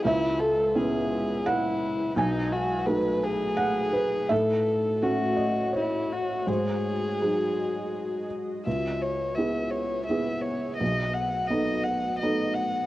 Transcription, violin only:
X:1
M:3/4
L:1/8
Q:1/4=84
K:C#m
V:1 name="Violin"
E A G2 E2 | D F B G3 | A2 F2 E F | G4- G z |
e c e c e c | d f d f d f |]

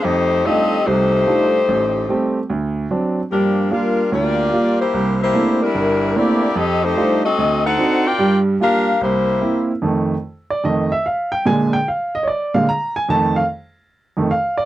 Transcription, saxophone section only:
X:1
M:4/4
L:1/8
Q:"Swing" 1/4=147
K:Fmix
V:1 name="Saxophone section"
[A,EGc]2 [CGAe]2 [A,EGc]4- | [A,EGc]4 z4 | [F,B,DG]2 [G,DFB]2 [B,FGd]3 [B,=EGc]- | [B,=EGc] [B,EGc]2 [G,DEB]3 [B,EGd]2 |
[CGAe] [A,EGc]2 [C_GAe]2 [EAc^f]2 [=FBd=g]- | [FBdg] z [DGBf]2 [B,=EGc]3 z | z8 | z8 |
z8 |]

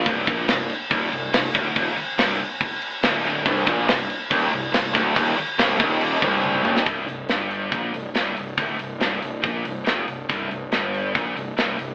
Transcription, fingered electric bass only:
X:1
M:4/4
L:1/8
Q:1/4=141
K:Cm
V:1 name="Fingered electric bass" clef=bass
C,,, B,,, C,,, z E,,, C,,, C,,, D,,, | E,,, z C,,, z3 D,,,2 | C,,, B,,, C,,, z E,,, C,,, C,,, D,,, | E,,, z C,,, E,,,2 C,,,2 E,,, |
C,,, C,,, G,,,2 B,,, C,,, C,,, C,,, | D,,, C,,, C,,, C,,, B,,, C,,, F,,, C,,, | C,,, C,,, G,,,2 B,,, C,,, C,,, C,,, |]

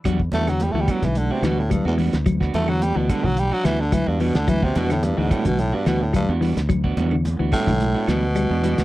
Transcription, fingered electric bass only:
X:1
M:4/4
L:1/16
Q:1/4=108
K:Em
V:1 name="Fingered electric bass" clef=bass
E,,2 E,,3 D,, z B,,,2 z D,,3 E,,2 D,,- | D,,2 E,,3 D,, z B,,,2 z D,,3 E,,2 D,,- | D,,2 E,,3 D,, z B,,,2 z D,,3 E,,2 D,,- | D,,2 E,,3 D,, z B,,,2 z D,,3 E,,2 D,, |]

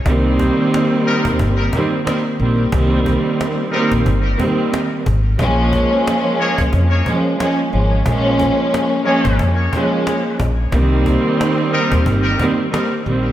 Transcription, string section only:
X:1
M:4/4
L:1/8
Q:"Swing 16ths" 1/4=90
K:Cphr
V:1 name="String section"
[E,G,B,C]4- [E,G,B,C] [E,G,B,C] [E,G,B,C] [E,G,B,C] | [E,G,B,C]3 [E,G,B,C] z [E,G,B,C]2 z | [F,A,B,D]4- [F,A,B,D] [F,A,B,D] [F,A,B,D] [F,A,B,D] | [F,A,B,D]3 [F,A,B,D] z [F,A,B,D]2 z |
[E,G,B,C]4- [E,G,B,C] [E,G,B,C] [E,G,B,C] [E,G,B,C] |]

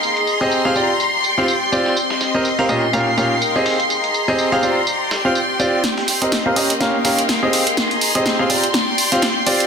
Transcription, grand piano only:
X:1
M:4/4
L:1/16
Q:"Swing 16ths" 1/4=124
K:Cm
V:1 name="Grand piano"
z3 [CGAe]2 [CGAf] [CFGd] z4 [CFGf] z2 [CFGd]2 | z3 [CGBe] z [CGBf] [B,,_DGBe] z [B,,DGBf] z [B,,DGBf] z2 [CGAe]2 z | z3 [CGAe]2 [CGAf] [CFGd] z4 [CFGf] z2 [CFGd]2 | z3 [CGBe] z [CGBf] [_DGBe] z [DGBf] z [DGBf] z2 [CGAe]2 z |
z3 [CGAe]2 [CGAf] [CFGd] z4 [CFGf] z2 [CFGd]2 |]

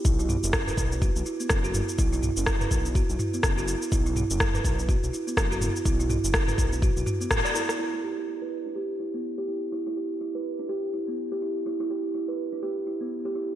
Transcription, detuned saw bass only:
X:1
M:4/4
L:1/16
Q:"Swing 16ths" 1/4=124
K:Em
V:1 name="Detuned saw bass" clef=bass
B,,,3 F,,,3 B,,,3 B,,, z2 F,,,3 z | B,,,3 F,,,3 B,,,3 B,,, z2 F,,,3 z | B,,,3 F,,,3 B,,,3 B,,, z2 F,,,3 z | B,,,3 F,,,3 B,,,3 B,,, z2 A,,, z3 |
z16 | z16 | z16 |]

